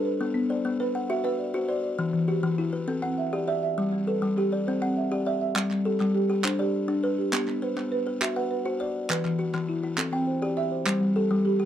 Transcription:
Already playing: marimba A4, kalimba A4
0.05 marimba B4
0.21 kalimba B3
0.34 marimba B3
0.50 kalimba C5, marimba D5
0.65 kalimba B3
0.80 kalimba B4, marimba B4
0.95 kalimba F#5
1.09 kalimba F#4, marimba E5
1.24 marimba B4, kalimba E5
1.39 marimba D5
1.54 kalimba F#4, marimba C5
1.68 kalimba C5, marimba D5
1.84 marimba D5
1.99 kalimba E3
2.13 marimba E3
2.28 kalimba F#4, marimba G4
2.43 kalimba E3
2.58 kalimba E4, marimba E4
2.73 kalimba B4
2.88 kalimba C4, marimba A4
3.02 marimba C4, kalimba F#5
3.18 marimba E5
3.33 kalimba G4, marimba D5
3.48 kalimba D5, marimba E5
3.63 marimba E5
3.78 kalimba G3
3.93 marimba G3
4.07 kalimba A4, marimba B4
4.22 kalimba G3
4.37 marimba G4, kalimba G4
4.52 kalimba D5
4.67 kalimba C4, marimba C5
4.82 marimba C4, kalimba F#5
4.97 marimba E5
5.12 kalimba G4, marimba D5
5.26 kalimba D5, marimba E5
5.41 marimba E5
5.56 kalimba G3, clap
5.71 marimba G3, clap
5.85 marimba G4, kalimba A4
6.00 kalimba G3, clap
6.15 marimba G4
6.30 kalimba G4
6.44 kalimba D4, marimba C5, clap
6.59 marimba G4, kalimba D5
6.88 kalimba D4
7.03 marimba B4, kalimba B4
7.18 marimba G4
7.33 kalimba B3, marimba G4, clap
7.47 marimba B3, clap
7.62 marimba B4, kalimba C5
7.77 kalimba B3, clap
7.92 marimba B4
8.07 kalimba B4
8.21 kalimba F#4, marimba E5, clap
8.36 marimba B4, kalimba F#5
8.51 marimba B4
8.65 kalimba F#4, marimba C5
8.80 kalimba D5, marimba D5
9.10 kalimba E3, marimba B4, clap
9.25 marimba E3, clap
9.39 kalimba F#4
9.54 kalimba E3, clap
9.69 marimba E4
9.83 kalimba E4
9.98 kalimba C4, marimba A4, clap
10.12 marimba C4, kalimba G5
10.27 marimba C5
10.42 kalimba G4, marimba D5
10.57 marimba E5, kalimba E5
10.71 marimba C5
10.86 kalimba G3, marimba C5, clap
11.01 marimba G3
11.16 marimba G4, kalimba A4
11.31 kalimba G3
11.45 marimba G4
11.60 kalimba G4

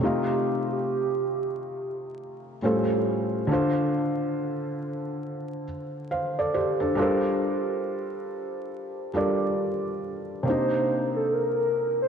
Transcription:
0.00 felt piano C3 A3 D#4, soft synth lead G4
0.05 felt piano F4
0.72 soft synth lead G4
2.62 felt piano A2 G3 C#4 F4 C5, soft synth lead A4
3.47 felt piano D3 D4
3.51 felt piano F4 C5
6.11 felt piano C5 F5
6.39 felt piano A4 D5
6.54 felt piano G4 C5
6.80 felt piano D4 A4
6.95 felt piano G3 D4 F4 A4
7.01 felt piano A#4 C5
9.13 felt piano G3 D4 F4 A4 A#4 D5
10.43 felt piano C3 A#3 D4
10.47 felt piano D#4, soft synth lead C5
11.16 soft synth lead A4
11.34 soft synth lead A#4
12.02 soft synth lead C5

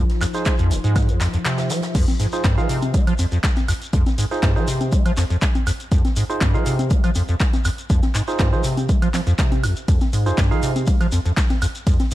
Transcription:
Already playing: ambient pad F3 D#4 F4
0.10 snare, closed hi-hat
0.21 acid bass F2, clap, closed hi-hat, open hi-hat, high woodblock, shekere
0.34 synth stab D#4 F4 G#4 C5, snare, closed hi-hat, shekere
0.45 kick, snare, clap, closed hi-hat, shekere
0.58 acid bass F2, closed hi-hat, shekere
0.71 acid bass F1, closed hi-hat, open hi-hat, shekere
0.84 acid bass G#2, closed hi-hat, shekere
0.95 kick, snare, closed hi-hat, high woodblock, shekere
1.09 acid bass F2, closed hi-hat, shekere
1.21 acid bass F2, snare, clap, closed hi-hat, open hi-hat, shekere
1.33 acid bass F2, closed hi-hat, shekere
1.45 acid bass C3, snare, clap, closed hi-hat, shekere
1.58 snare, closed hi-hat, shekere
1.70 acid bass F3, snare, closed hi-hat, open hi-hat, shekere
1.82 snare, closed hi-hat, shekere
1.95 acid bass F2, kick, closed hi-hat, crash, shekere
2.08 snare, closed hi-hat, high conga, shekere
2.20 acid bass G#2, closed hi-hat, open hi-hat, shekere
2.33 synth stab D#4 F4 G#4 C5, closed hi-hat, shekere
2.44 acid bass G2, kick, snare, clap, closed hi-hat, high conga, shekere
2.58 acid bass F3, synth stab D#4 F4 G#4 F5, shekere
2.69 acid bass C3, closed hi-hat, open hi-hat, shekere
2.82 closed hi-hat, high conga, shekere
2.94 acid bass G#3, kick, closed hi-hat, shekere
3.07 acid bass F3, closed hi-hat, high woodblock, shekere
3.18 acid bass F2, closed hi-hat, open hi-hat, high conga, shekere
3.32 acid bass F2, closed hi-hat, shekere
3.44 kick, snare, clap, closed hi-hat, shekere
3.56 snare, closed hi-hat, high conga, shekere
3.68 acid bass F2, closed hi-hat, open hi-hat, high woodblock, shekere
3.82 closed hi-hat, shekere
3.93 acid bass F2, kick, closed hi-hat, shekere
4.06 snare, closed hi-hat, high conga, shekere
4.18 acid bass G#2, closed hi-hat, open hi-hat, shekere
4.31 synth stab D#4 F4 G#4 C5, snare, shekere
4.43 acid bass G2, kick, snare, clap, closed hi-hat, high conga, shekere
4.56 acid bass F3, synth stab D#4 F4 G#4 C5, shekere
4.68 acid bass C3, closed hi-hat, open hi-hat, shekere
4.81 closed hi-hat, high conga, shekere
4.92 acid bass G#3, kick, closed hi-hat, shekere
5.05 acid bass F3, closed hi-hat, high woodblock, shekere
5.17 acid bass F2, snare, clap, closed hi-hat, open hi-hat, high conga, shekere
5.30 acid bass F2, closed hi-hat, shekere
5.42 kick, snare, clap, closed hi-hat, shekere
5.55 closed hi-hat, high conga, shekere
5.67 acid bass F2, closed hi-hat, open hi-hat, high woodblock, shekere
5.80 closed hi-hat, shekere
5.91 acid bass F2, kick, closed hi-hat, shekere
6.05 snare, closed hi-hat, high conga, shekere
6.16 acid bass G#2, closed hi-hat, open hi-hat, shekere
6.29 synth stab D#4 F4 G#4 C5, closed hi-hat, shekere
6.41 acid bass G2, kick, snare, clap, closed hi-hat, high conga, shekere
6.54 acid bass F3, synth stab D#4 F4 G#4 F5, shekere
6.66 acid bass C3, closed hi-hat, open hi-hat, shekere
6.79 closed hi-hat, high conga, shekere
6.90 acid bass G#3, kick, closed hi-hat, shekere
7.04 acid bass F3, closed hi-hat, high woodblock, shekere
7.15 acid bass F2, closed hi-hat, open hi-hat, high conga, shekere
7.28 acid bass F2, closed hi-hat, shekere
7.40 kick, snare, clap, closed hi-hat, shekere
7.53 snare, closed hi-hat, high conga, shekere
7.65 acid bass F2, closed hi-hat, open hi-hat, high woodblock, shekere
7.78 closed hi-hat, shekere
7.90 acid bass F2, kick, closed hi-hat, shekere
8.03 snare, closed hi-hat, high conga, shekere
8.15 acid bass G#2, clap, closed hi-hat, open hi-hat, shekere
8.28 synth stab D#4 F4 G#4 C5, snare, shekere
8.39 acid bass G2, kick, snare, clap, closed hi-hat, high conga, shekere
8.53 acid bass F3, synth stab D#4 F4 G#4 C5, shekere
8.64 acid bass C3, closed hi-hat, open hi-hat, shekere
8.77 closed hi-hat, high conga, shekere
8.89 acid bass G#3, kick, closed hi-hat, shekere
9.02 acid bass F3, closed hi-hat, high woodblock, shekere
9.13 acid bass F3, snare, clap, closed hi-hat, open hi-hat, high conga, shekere
9.27 acid bass F2, closed hi-hat, shekere
9.39 acid bass C3, kick, snare, clap, closed hi-hat, shekere
9.52 closed hi-hat, high conga, shekere
9.63 acid bass F2, closed hi-hat, open hi-hat, high woodblock, shekere
9.76 closed hi-hat, shekere
9.88 acid bass F2, kick, closed hi-hat, ride, shekere
10.00 snare, closed hi-hat, high conga, shekere
10.13 acid bass G#2, closed hi-hat, open hi-hat, shekere
10.26 acid bass F2, synth stab D#4 F4 G#4 C5, closed hi-hat, shekere
10.37 acid bass G2, kick, snare, clap, closed hi-hat, ride, high conga, shekere
10.51 acid bass F3, synth stab D#4 F4 G#4 F5, shekere
10.63 acid bass C3, closed hi-hat, open hi-hat, shekere
10.76 closed hi-hat, high conga, shekere
10.86 acid bass G#3, kick, closed hi-hat, ride, shekere
11.01 acid bass F3, closed hi-hat, high woodblock, shekere
11.12 acid bass F2, closed hi-hat, open hi-hat, high conga, shekere
11.25 acid bass F2, closed hi-hat, shekere
11.37 kick, snare, clap, closed hi-hat, ride, shekere
11.49 snare, closed hi-hat, high conga, shekere
11.62 acid bass F2, closed hi-hat, open hi-hat, high woodblock, shekere
11.75 closed hi-hat, shekere
11.87 acid bass F2, kick, closed hi-hat, ride, shekere
11.99 snare, closed hi-hat, high conga, shekere

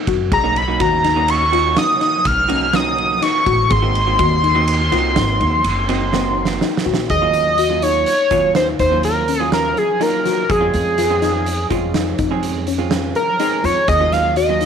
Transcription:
0.07 upright bass F#2, synth arpeggio sound F#4, kick, ride
0.32 upright bass B1, synth arpeggio sound G#4, analog synth lead A#5, kick, ride
0.44 hollow-body jazz guitar A#3 C#4 D#4 F#4
0.56 analog synth lead B5, ride
0.68 hollow-body jazz guitar A#3 C#4 D#4 F#4
0.80 upright bass D#2, synth arpeggio sound F#4, analog synth lead A#5, kick, ride
1.04 synth arpeggio sound D#4, snare, ride
1.16 hollow-body jazz guitar A#3 C#4 D#4 F#4
1.28 analog synth lead C#6, ride
1.52 hollow-body jazz guitar A#3 C#4 D#4 F#4, synth arpeggio sound F4, ride
1.77 synth arpeggio sound D#4, analog synth lead D#6, snare, ride
2.01 synth arpeggio sound D#4, analog synth lead D#6, snare, ride
2.25 upright bass B1, analog synth lead F6, kick, snare, ride
2.49 hollow-body jazz guitar A#3 C#4 D#4 F#4, synth arpeggio sound C#4, ride
2.73 hollow-body jazz guitar A#3 C#4 D#4 F#4, synth arpeggio sound C#4, analog synth lead D#6, snare, ride
2.98 ride
3.22 synth arpeggio sound D#4, analog synth lead C#6, snare, ride
3.46 upright bass A1, synth arpeggio sound F#4, kick, ride
3.70 upright bass G#1, synth arpeggio sound G#4, analog synth lead C6, kick, ride
3.82 hollow-body jazz guitar A#3 C4 D#4 F#4
3.95 ride
4.06 hollow-body jazz guitar A#3 C4 D#4 F#4
4.19 upright bass D#2, synth arpeggio sound F#4, kick, ride
4.43 synth arpeggio sound D#4, ride
4.55 hollow-body jazz guitar A#3 C4 D#4 F#4
4.68 ride
4.92 upright bass C2, hollow-body jazz guitar A#3 C4 D#4 F#4, synth arpeggio sound F4, ride
5.16 upright bass G#1, synth arpeggio sound D#4, snare, ride
5.40 upright bass D#2, synth arpeggio sound D#4, ride
5.64 upright bass F#1, ride
5.89 hollow-body jazz guitar A#3 C4 D#4 F#4, synth arpeggio sound C4, ride
6.12 hollow-body jazz guitar A#3 C4 D#4 F#4, synth arpeggio sound C4, snare
6.45 snare
6.61 synth arpeggio sound D#4, snare
6.77 snare
6.86 upright bass A#1, synth arpeggio sound F#4
6.94 snare
7.09 upright bass D#2, synth arpeggio sound G#4, analog synth lead D#5, kick, closed hi-hat
7.22 hollow-body jazz guitar F#3 A#3 C#4 F4
7.33 closed hi-hat
7.58 synth arpeggio sound F#4, closed hi-hat
7.70 hollow-body jazz guitar F#3 A#3 C#4 F4
7.82 synth arpeggio sound D#4, analog synth lead C#5, closed hi-hat
8.06 analog synth lead C#5, closed hi-hat
8.31 upright bass D#2, hollow-body jazz guitar F#3 A#3 C#4 F4, synth arpeggio sound F4, kick, closed hi-hat
8.55 synth arpeggio sound D#4, analog synth lead C5, snare, closed hi-hat
8.79 upright bass D#2, synth arpeggio sound D#4, analog synth lead C5, kick, snare, closed hi-hat
8.91 hollow-body jazz guitar F#3 A#3 C#4 F4
9.03 analog synth lead A#4, closed hi-hat
9.28 synth arpeggio sound C#4, closed hi-hat
9.40 hollow-body jazz guitar F#3 A#3 C#4 F4
9.52 synth arpeggio sound C#4, analog synth lead A#4, snare, closed hi-hat
9.77 analog synth lead G#4, closed hi-hat
10.00 hollow-body jazz guitar F#3 A#3 C#4 F4, synth arpeggio sound D#4, analog synth lead A#4, closed hi-hat
10.25 synth arpeggio sound F#4, snare, closed hi-hat
10.49 upright bass F2, synth arpeggio sound G#4, analog synth lead G#4, kick, closed hi-hat
10.61 hollow-body jazz guitar G#3 C4 C#4 F4
10.74 upright bass F2, analog synth lead G#4, closed hi-hat
10.98 synth arpeggio sound F4, snare, closed hi-hat
11.10 hollow-body jazz guitar G#3 C4 C#4 F4
11.22 synth arpeggio sound D#4, snare, closed hi-hat
11.46 closed hi-hat
11.70 upright bass F2, hollow-body jazz guitar G#3 C4 C#4 F4, synth arpeggio sound F4, kick, closed hi-hat
11.94 synth arpeggio sound D#4, snare, closed hi-hat
12.18 upright bass F2, synth arpeggio sound D#4, kick, closed hi-hat
12.31 hollow-body jazz guitar G#3 C4 C#4 G#4
12.43 closed hi-hat
12.67 synth arpeggio sound C#4, closed hi-hat
12.78 hollow-body jazz guitar G#3 C4 C#4 F4
12.91 synth arpeggio sound C#4, snare, closed hi-hat
13.15 analog synth lead A#4, closed hi-hat
13.39 hollow-body jazz guitar G#3 C4 C#4 G#4, synth arpeggio sound D#4, closed hi-hat
13.64 upright bass F2, synth arpeggio sound F4, analog synth lead C#5, closed hi-hat
13.88 upright bass D#2, synth arpeggio sound G#4, analog synth lead D#5, kick, closed hi-hat
14.00 hollow-body jazz guitar F#3 A#3 C#4 F4
14.12 analog synth lead F5, snare, closed hi-hat
14.36 synth arpeggio sound F#4, analog synth lead D#5, closed hi-hat
14.49 hollow-body jazz guitar F#3 A#3 C#4 F4
14.61 synth arpeggio sound D#4, closed hi-hat

